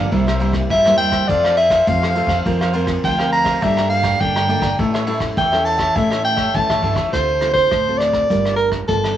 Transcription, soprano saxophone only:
0, 0, Header, 1, 2, 480
1, 0, Start_track
1, 0, Key_signature, -1, "minor"
1, 0, Tempo, 584795
1, 95, Time_signature, 4, 2, 24, 8
1, 7528, End_track
2, 0, Start_track
2, 0, Title_t, "Soprano saxophone"
2, 0, Program_c, 0, 64
2, 581, Note_on_c, 0, 76, 86
2, 797, Note_off_c, 0, 76, 0
2, 802, Note_on_c, 0, 79, 95
2, 1050, Note_on_c, 0, 74, 85
2, 1063, Note_off_c, 0, 79, 0
2, 1284, Note_off_c, 0, 74, 0
2, 1289, Note_on_c, 0, 76, 96
2, 1541, Note_on_c, 0, 77, 92
2, 1553, Note_off_c, 0, 76, 0
2, 2017, Note_off_c, 0, 77, 0
2, 2501, Note_on_c, 0, 79, 85
2, 2721, Note_off_c, 0, 79, 0
2, 2729, Note_on_c, 0, 82, 110
2, 2982, Note_on_c, 0, 76, 89
2, 2995, Note_off_c, 0, 82, 0
2, 3194, Note_off_c, 0, 76, 0
2, 3199, Note_on_c, 0, 77, 99
2, 3453, Note_on_c, 0, 79, 91
2, 3465, Note_off_c, 0, 77, 0
2, 3933, Note_off_c, 0, 79, 0
2, 4415, Note_on_c, 0, 79, 95
2, 4640, Note_on_c, 0, 81, 97
2, 4653, Note_off_c, 0, 79, 0
2, 4900, Note_on_c, 0, 76, 76
2, 4912, Note_off_c, 0, 81, 0
2, 5124, Note_off_c, 0, 76, 0
2, 5129, Note_on_c, 0, 79, 98
2, 5378, Note_on_c, 0, 81, 88
2, 5390, Note_off_c, 0, 79, 0
2, 5736, Note_off_c, 0, 81, 0
2, 5852, Note_on_c, 0, 72, 84
2, 6181, Note_off_c, 0, 72, 0
2, 6185, Note_on_c, 0, 72, 102
2, 6549, Note_on_c, 0, 74, 87
2, 6561, Note_off_c, 0, 72, 0
2, 7023, Note_off_c, 0, 74, 0
2, 7028, Note_on_c, 0, 70, 83
2, 7143, Note_off_c, 0, 70, 0
2, 7288, Note_on_c, 0, 69, 84
2, 7528, Note_off_c, 0, 69, 0
2, 7528, End_track
0, 0, End_of_file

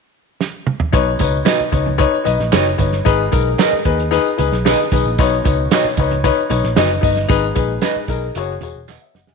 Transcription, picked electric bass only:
0, 0, Header, 1, 3, 480
1, 0, Start_track
1, 0, Key_signature, 5, "major"
1, 0, Tempo, 529568
1, 854, Time_signature, 4, 2, 24, 8
1, 8474, End_track
2, 0, Start_track
2, 0, Title_t, "Picked electric bass"
2, 0, Program_c, 0, 34
2, 847, Note_on_c, 0, 35, 97
2, 1039, Note_off_c, 0, 35, 0
2, 1085, Note_on_c, 0, 37, 72
2, 1278, Note_off_c, 0, 37, 0
2, 1561, Note_on_c, 0, 37, 80
2, 1852, Note_off_c, 0, 37, 0
2, 2057, Note_on_c, 0, 35, 80
2, 2152, Note_off_c, 0, 35, 0
2, 2174, Note_on_c, 0, 34, 65
2, 2271, Note_off_c, 0, 34, 0
2, 2291, Note_on_c, 0, 30, 77
2, 2484, Note_off_c, 0, 30, 0
2, 2528, Note_on_c, 0, 31, 84
2, 2722, Note_off_c, 0, 31, 0
2, 2775, Note_on_c, 0, 32, 96
2, 2967, Note_off_c, 0, 32, 0
2, 3017, Note_on_c, 0, 35, 93
2, 3208, Note_off_c, 0, 35, 0
2, 3493, Note_on_c, 0, 39, 78
2, 3781, Note_off_c, 0, 39, 0
2, 3981, Note_on_c, 0, 37, 89
2, 4077, Note_off_c, 0, 37, 0
2, 4102, Note_on_c, 0, 35, 80
2, 4292, Note_off_c, 0, 35, 0
2, 4460, Note_on_c, 0, 35, 85
2, 4556, Note_off_c, 0, 35, 0
2, 4577, Note_on_c, 0, 34, 91
2, 4675, Note_off_c, 0, 34, 0
2, 4701, Note_on_c, 0, 35, 101
2, 4891, Note_off_c, 0, 35, 0
2, 4945, Note_on_c, 0, 37, 82
2, 5133, Note_off_c, 0, 37, 0
2, 5412, Note_on_c, 0, 37, 83
2, 5699, Note_off_c, 0, 37, 0
2, 5897, Note_on_c, 0, 35, 103
2, 5993, Note_off_c, 0, 35, 0
2, 6024, Note_on_c, 0, 34, 76
2, 6118, Note_off_c, 0, 34, 0
2, 6137, Note_on_c, 0, 30, 78
2, 6327, Note_off_c, 0, 30, 0
2, 6373, Note_on_c, 0, 31, 84
2, 6564, Note_off_c, 0, 31, 0
2, 6613, Note_on_c, 0, 32, 98
2, 6804, Note_off_c, 0, 32, 0
2, 6855, Note_on_c, 0, 34, 86
2, 7045, Note_off_c, 0, 34, 0
2, 7325, Note_on_c, 0, 35, 91
2, 7517, Note_off_c, 0, 35, 0
2, 7577, Note_on_c, 0, 30, 98
2, 7764, Note_off_c, 0, 30, 0
2, 7815, Note_on_c, 0, 28, 90
2, 7909, Note_off_c, 0, 28, 0
2, 7939, Note_on_c, 0, 28, 84
2, 8124, Note_off_c, 0, 28, 0
2, 8292, Note_on_c, 0, 30, 80
2, 8385, Note_off_c, 0, 30, 0
2, 8412, Note_on_c, 0, 29, 72
2, 8474, Note_off_c, 0, 29, 0
2, 8474, End_track
3, 0, Start_track
3, 0, Title_t, "Muted picked electric bass strokes"
3, 1454, Note_on_c, 9, 29, 48
3, 1544, Note_off_c, 9, 29, 0
3, 3380, Note_on_c, 9, 29, 44
3, 3471, Note_off_c, 9, 29, 0
3, 5299, Note_on_c, 9, 29, 45
3, 5389, Note_off_c, 9, 29, 0
3, 7216, Note_on_c, 9, 29, 44
3, 7307, Note_off_c, 9, 29, 0
3, 8474, End_track
0, 0, End_of_file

